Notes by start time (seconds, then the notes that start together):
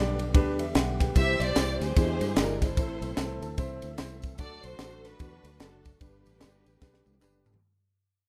Already playing: B1 G2 D3 G3 B3 D4 G4 D5
0.19 ride
0.34 D2 D4 G4 B4, kick, ride
0.59 E2 E5, ride
0.75 B1 F#5 G5, snare, ride
1.00 G4 B4 G5, kick, snare, ride
1.15 C2 C3 E3 C4 E4 G4 C5 E5, kick, ride, tambourine
1.40 B1 G4 D5, ride, tambourine
1.56 C2 E4 G4 C5, snare, clap, ride, tambourine
1.80 D2 G4 G#4 C5, snare, ride, tambourine
1.96 E2 D3 E3 G#3 D4 E4 G4 C5, kick, ride, tambourine
2.21 G2, ride, tambourine
2.36 G1 G#3 D4 E4 G4 A#4 D5, snare, clap, ride, tambourine
2.61 E4 A4 C5, kick, snare, ride, tambourine
2.77 A1 A2 E3 A3 C4 E4 A4, kick, ride, tambourine
3.01 B1, ride, tambourine
3.17 C2 C4 E4 A4, snare, clap, ride, tambourine
3.41 D2 A5, ride, tambourine
3.58 C2 C4 E4 C5 E5, kick, ride, tambourine
3.82 D2, ride, tambourine
3.98 C2 C4 E4 C5 E5, snare, clap, ride, tambourine
4.22 kick, ride, tambourine
4.38 D2 D3 F#3 D4 F#4 A4 D5, kick, ride, tambourine
4.63 B1 F#4 A4 C5, ride, tambourine
4.79 A1 D4 F#4 A4, snare, clap, ride, tambourine
5.05 D4 F#4 B4, snare, ride, tambourine
5.19 E2 D4 F#4 B4, kick, ride, tambourine
5.44 D2, ride, tambourine
5.60 F#1 D4 F#4 A4, snare, clap, ride, tambourine
5.85 kick, ride, tambourine
6.00 G1 G2 G3 B3 D4 G4 B4, kick, ride, tambourine
6.26 A1, ride, tambourine
6.41 G1 D4 G4 D5, snare, clap, ride, tambourine
6.66 A1, ride, tambourine
6.81 B1 D4 G4 B4, kick, snare, tambourine
6.94 snare
7.06 C2, high tom, tambourine
7.14 high tom
7.21 F#1 D4 G4 B4, clap, tambourine
7.46 floor tom, tambourine
7.54 floor tom